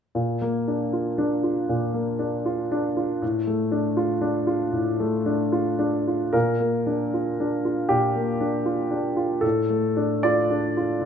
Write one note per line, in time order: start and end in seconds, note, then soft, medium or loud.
0.15 1.66 A#2 soft
0.42 0.83 A#3 soft
0.68 1.09 D4 soft
0.93 1.34 F4 soft
1.18 1.59 D4 soft
1.43 1.84 F4 soft
1.69 3.17 A#2 soft
1.94 2.35 A#3 soft
2.19 2.60 D4 soft
2.45 2.86 F4 soft
2.72 3.12 D4 soft
2.97 3.22 F4 soft
3.22 4.69 A2 soft
3.47 3.87 A3 soft
3.72 4.11 D4 soft
3.97 4.37 F4 soft
4.21 4.63 D4 soft
4.47 4.89 F4 soft
4.73 6.30 A2 soft
5.00 5.42 A3 soft
5.26 5.69 D4 soft
5.52 5.96 F4 soft
5.79 6.23 D4 soft
6.08 6.35 F4 soft
6.33 7.87 A#2 soft
6.33 7.91 A#4 medium
6.60 7.03 A#3 soft
6.87 7.30 D4 soft
7.14 7.56 F4 soft
7.40 7.81 D4 soft
7.65 8.06 F4 soft
7.89 9.39 A#2 soft
7.89 9.42 G4 medium
8.16 8.57 A#3 soft
8.40 8.82 D4 soft
8.66 9.07 F4 soft
8.91 9.32 D4 soft
9.17 9.43 F4 soft
9.41 10.97 A2 soft
9.41 10.23 A4 medium
9.70 10.14 A3 soft
9.97 10.40 D4 soft
10.23 10.66 F4 soft
10.23 11.05 D5 medium
10.51 10.91 D4 soft
10.77 11.05 F4 soft
11.01 11.05 A2 soft